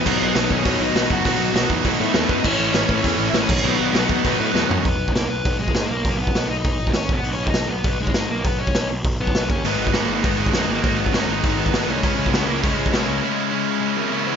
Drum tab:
CC |x---------------|----------------|x-------------x-|----------------|
HH |----o---o---o---|o---o---o---o---|----o---o---o---|----o---o-------|
SD |----o-------o---|----o-------o---|----o-------o---|----o-------o---|
FT |----------------|----------------|----------------|--------------o-|
BD |o-----o-o-----o-|o-----o-o-----o-|o-----o-o-----o-|------o-o-------|

CC |----------------|----------------|----------------|----------------|
HH |o---o---o---o---|o---o---o---o---|o---o---o---o---|o---o---o---o---|
SD |----o-------o---|----o-------o---|----o-------o---|----o-------o---|
FT |----------------|----------------|----------------|----------------|
BD |o--o----o--o----|o--o----o--o--o-|---o----o--o----|o--o----o--o--o-|

CC |----------------|----------------|----------------|----------------|
HH |o---o---o---o---|o---o---o---o---|o---o---o---o---|----------------|
SD |----o-------o---|----o-------o---|----o-------o---|----------------|
FT |----------------|----------------|----------------|----------------|
BD |---o----o--o----|o--o----o--o----|o--o----o--o----|----------------|